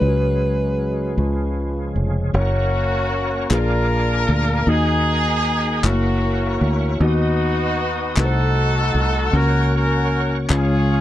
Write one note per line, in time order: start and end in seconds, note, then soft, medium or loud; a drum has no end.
0.00 1.14 C#2 medium
0.00 1.13 C#3 medium
0.00 1.13 F#3 soft
0.00 1.14 F#3 medium
0.00 1.16 G#3 medium
0.00 2.31 G#3 medium
0.00 1.16 G#3 medium
0.00 2.32 C#4 medium
0.00 1.17 C#4 medium
0.00 2.32 C#4 medium
0.00 0.07 F4 soft
0.00 1.14 F#4 medium
0.00 2.32 G#4 medium
0.00 1.94 B4 medium
0.00 1.18 C#5 medium
0.08 1.21 F#4 medium
1.17 1.91 C#2 medium
1.17 2.30 C#3 medium
1.17 2.33 F3 medium
1.17 2.33 F3 soft
1.17 2.34 G#3 medium
1.17 2.33 G#3 soft
1.17 2.33 C#4 medium
1.17 2.33 F4 medium
1.17 2.35 F4 medium
1.17 2.35 C#5 medium
1.96 2.31 F1 medium
2.34 3.47 F#1 loud
2.34 3.49 A#3 medium
2.34 3.48 A#3 medium
2.34 3.51 C#4 medium
2.34 3.47 C#4 medium
2.34 3.51 F#4 medium
2.34 3.47 F#4 medium
2.34 6.96 A#4 medium
2.34 3.50 C#5 medium
2.34 3.52 C#5 medium
2.34 3.49 F#5 medium
2.34 3.49 C#6 medium
3.50 4.24 A#1 loud
3.50 4.63 A#2 medium
3.50 4.66 A#3 medium
3.50 4.64 D4 medium
3.50 4.67 F4 medium
3.50 4.64 F4 medium
3.50 4.67 G#4 medium
3.50 4.68 A#4 loud
3.50 3.58 B4 medium
3.50 4.66 F5 medium
3.50 4.66 G#5 medium
3.50 4.66 D6 medium
3.50 clap medium
3.58 4.71 D5 medium
4.29 4.64 D2 medium
4.67 5.80 D#2 loud
4.67 5.80 D#3 medium
4.67 5.84 A#3 medium
4.67 5.84 D#4 medium
4.67 5.80 D#4 medium
4.67 5.84 F#4 medium
4.67 5.85 G#4 loud
4.67 5.83 D#5 medium
4.67 5.85 D#5 medium
4.67 6.99 F#5 medium
4.67 5.83 D#6 medium
5.84 6.57 F#1 medium
5.84 5.90 A3 medium
5.84 6.97 A#3 medium
5.84 6.97 C#4 medium
5.84 7.01 E4 medium
5.84 7.01 F#4 medium
5.84 6.72 F#4 medium
5.84 7.01 C#5 medium
5.84 7.00 E5 medium
5.84 7.00 C#6 medium
5.84 clap loud
5.90 7.03 A#3 medium
6.61 6.97 D2 medium
7.00 8.13 D#2 loud
7.00 8.13 D#3 medium
7.00 8.17 B3 medium
7.00 8.14 B3 medium
7.00 8.16 D#4 medium
7.00 8.14 D#4 medium
7.00 8.17 F#4 medium
7.00 8.14 F#4 medium
7.00 8.16 B4 medium
7.00 9.31 D#5 medium
7.00 8.18 D#5 medium
7.00 10.46 F#5 medium
7.00 8.16 D#6 medium
8.16 8.91 C2 loud
8.16 9.30 C3 medium
8.16 9.33 A3 medium
8.16 9.34 D#4 medium
8.16 9.31 D#4 medium
8.16 9.32 F#4 medium
8.16 9.30 F#4 medium
8.16 9.33 A4 medium
8.16 9.35 A4 loud
8.16 8.24 B4 medium
8.16 9.33 C6 medium
8.16 clap medium
8.25 9.38 C5 medium
8.95 9.30 C2 medium
9.32 10.46 C#2 loud
9.32 10.46 C#3 medium
9.32 10.50 A#3 medium
9.32 10.48 C#4 medium
9.32 9.73 C#4 medium
9.32 10.50 F#4 medium
9.32 9.73 F#4 medium
9.32 10.49 A#4 medium
9.32 9.74 A#4 loud
9.32 9.40 B4 medium
9.32 11.01 C#5 medium
9.32 11.01 C#6 medium
9.41 10.49 C#5 medium
9.74 10.34 C#4 medium
9.74 10.34 F#4 medium
9.74 10.34 A#4 loud
10.49 11.01 C#2 loud
10.49 11.01 C#3 medium
10.49 11.01 G#3 medium
10.49 11.01 C#4 medium
10.49 11.01 F4 medium
10.49 11.01 G#4 medium
10.49 11.01 C#5 medium
10.49 11.01 F5 medium
10.49 clap medium
10.53 11.01 G#4 loud